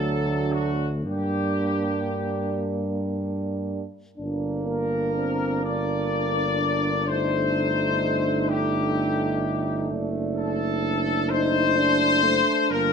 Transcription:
Already playing: D2 F#3 A3 D4 A4
0.52 F#4
1.04 G2 G3 A#3 D4 G4
4.18 G1 A#3 D4
4.66 A#3 A#4
5.15 C4
5.64 D4 D5
7.06 A3 D#4 C5
8.49 G4
9.91 F#1 D4
10.36 A4
11.30 D#4 C5
11.78 D4
12.25 A3
12.71 G1 G3 A#3 A#4

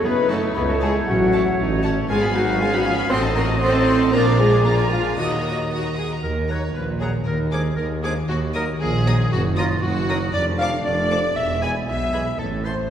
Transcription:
Already playing: C#4 C#5
0.04 F#1 F#2 A3 B3 D#4 G#4 B4 C#5 B5
0.21 C#4
0.29 A3 F#4 A4 C#5 F#5 A5
0.38 C#5
0.54 C#2 B3 G#4 B4 F#5 B5
0.67 A3 F#4 A4 A5
0.74 C#5
0.81 G#3 E4 G#4 C#5 F#5 G#5 A5
1.05 A1 A2 F#3 C#4 F#5
1.09 F#4
1.25 C#4
1.33 E4 C#5 F#5 A5
1.43 C#5
1.58 A1 D#4 F#5
1.76 C#5
1.83 C#4 C#5 F#5 A5
1.93 F#4
2.09 G#1 G#2 G#3 B3 F4 G#4 F5 G#5
2.22 F5 G#5 B5
2.27 B3
2.33 F#3 D#4 F#4 F5 F#5 G#5
2.44 F5 G#5 B5
2.60 G#3 C#4 F4 G#4 B4 F5 G#5
2.73 F#3 D#4 F#4 F5 F#5 G#5 B5
2.78 F5
2.85 F3 C#4 F4 F5 G#5
2.95 F4 F5 G#5 B5
3.09 A1 A2 F#3 C4 A4 C5 D#5 F#5 C6
3.22 D#5 A5
3.35 A#3 F#4 A#4 C5 F#5 A#5 C6
3.47 D#5 A5
3.60 C4 A4 C5 F#5 C6
3.74 D#5 A5
3.86 C5 F#5 C6
3.98 D#5 A5
4.12 A#1 F3 A#3 D4 F4 A#4 D5 F5 A#5
4.25 D5 F5 A#5
4.32 D4
4.37 G#3 F4 G#4 A#4 F5 G#5 A#5
4.49 F4 A#4 D5 F5 A#5
4.63 A#2 G#3 A#3 F4 A#4 D5 F5 A#5
4.77 D5 G#5 A#5
4.83 D4
4.91 F3 D4 F4 A#4 F5 A#5
5.01 G#4 A#4 D5 G#5 A#5
5.16 D#2 D#3 F#3 A#3 D#4 F#4 A#4 D#5 F#5 D#6
5.30 D#5 A#5
5.36 D#4
5.42 A#4 F#5 D#6
5.54 A#4 D#5 A#5
5.69 F#4 A#4 F#5 D#6
5.83 D#5 A#5
5.89 D#5
5.96 G#4 A#4 F#5 D#6
6.06 A#4 D#5
6.11 A#5
6.22 D#2 D#3 A#4
6.49 F#3 D#4 A#4 C#5 F#5 A#5
6.74 A#1 A#2 A#4 B4
7.00 F#3 D#4 F#4 G#4 A#4 F#5 A#5
7.25 D#2 D#3 A#4
7.51 F3 G#3 D4 G#4 A#4 G#5 D6
7.76 D#2 G#4 A#4
8.02 F3 G#3 D4 F4 G#4 A#4 G#5 D6
8.28 D#2 D#3 F#4
8.54 F#3 A#3 D#4 A#4 A#5 D#6
8.79 A#1 A#2 G#4 A#4
9.05 F#3 A#3 D#4 F#4 A#4 A#5 D#6
9.31 F#1 F#2 F#4
9.57 F#3 A#3 D#4 F4 A#4 A#5 D#6
9.82 F#1 F#2 F#4
10.08 F#3 A#3 D#4 A#4 A#5 D#6
10.33 F1 F2 A3 D4 D5
10.58 F3 A3 A4 F5 A5 D6
10.85 F1 F2 A4 D5
11.10 F3 A3 D4 A4 A5 D6
11.35 E1 E2 G#3 B3 E5
11.62 E3 G#3 G#4 G#5 B5
11.88 B1 B2 E4 E5
12.13 E3 G#4 G#5 B5
12.39 A1 A2 A3 C4 A4
12.65 E3 C4 E4 A4 C5 A5 C6

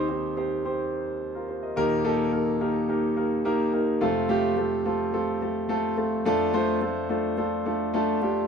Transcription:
Already playing: D#2 D#3 C4 D#4 G4 C5
0.09 C4 D#4 G4 C5
0.37 C4 D#4 G4 C5
0.65 C4 D#4 G4 C5
1.35 F4 A#4
1.48 G4 C5
1.63 A#4 D#5
1.76 D#2 A#2 A#3 D#4 G4 A#4
2.04 A#3 D#4 G4 A4
2.32 A#3 D#4 G4 A#4
2.61 A#3 D#4 G4 A#4
2.89 A#3 D#4 G4 A#4
3.16 A#3 D#4 G4 A#4
3.45 A#3 D#4 G4 A#4
3.73 A#3 D#4 G4 A#4
4.01 F2 C3 A3 C4 F4 A4
4.29 A3 C4 F4 G4
4.57 A3 C4 F4 A4
4.85 A3 C4 F4 A4
5.13 A3 C4 F4 A4
5.42 A3 C4 F4 A4
5.69 A3 C4 F4 A4
5.97 A3 C4 F4 A4
6.25 F2 F3 A3 D4 F4 A4
6.53 A3 D4 F4 C5
6.81 A3 D4 F4 A4
7.09 A3 D4 F4 A4
7.37 A3 D4 F4 A4
7.65 A3 D4 F4 A4
7.94 A3 D4 F4 A4
8.22 A3 D4 F4 G4

